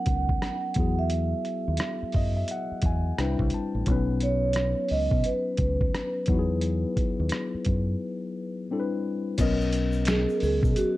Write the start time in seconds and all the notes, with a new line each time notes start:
Already playing: F#3 B3 C#4 D#4 A#4 F#5
0.06 C#2, kick, closed hi-hat
0.29 kick
0.42 cross-stick, closed hi-hat
0.74 E2 F#3 B3 F#4, kick, closed hi-hat
0.79 E4 G#4
0.99 E5
1.10 closed hi-hat
1.45 closed hi-hat
1.68 D#2
1.77 cross-stick, closed hi-hat
2.03 muted fingered electric bass stroke
2.12 F#2 D#5, kick, open hi-hat
2.37 E5
2.48 F#5, closed hi-hat
2.72 muted fingered electric bass stroke
2.82 E2, kick, closed hi-hat
2.86 G#5
3.18 C2 G3 C4 D4 E4 B4 G5, cross-stick, closed hi-hat
3.39 C2, kick
3.50 closed hi-hat
3.54 A5
3.75 A1
3.86 B1 F#3 B3 C#4, kick, closed hi-hat
3.90 D#4 B4
4.21 C#5, closed hi-hat
4.53 cross-stick, closed hi-hat
4.88 C#2 D#5, open hi-hat
5.11 B2, kick
5.24 B4, closed hi-hat
5.57 C#2, kick, closed hi-hat
5.81 kick
5.95 cross-stick, closed hi-hat
6.26 E2 F#3 B3, kick, closed hi-hat
6.30 D#4 E4 F#4
6.39 G#4
6.61 closed hi-hat
6.97 kick, closed hi-hat
7.20 D#2
7.29 cross-stick, closed hi-hat
7.55 muted fingered electric bass stroke
7.65 F#2, kick, closed hi-hat
8.71 G3 C4 D4 E4 A4
8.80 B4
9.38 B1 F#3 B3 C#4 D#5, kick, closed hi-hat, crash, shaker
9.43 A#4
9.61 shaker
9.72 closed hi-hat, shaker
9.92 shaker
10.05 G#4, finger snap, snare, closed hi-hat, shaker
10.29 shaker
10.37 A#4, open hi-hat
10.43 C#2 G#4, shaker
10.63 B2, kick, shaker
10.71 G#4
10.76 F#4, closed hi-hat, shaker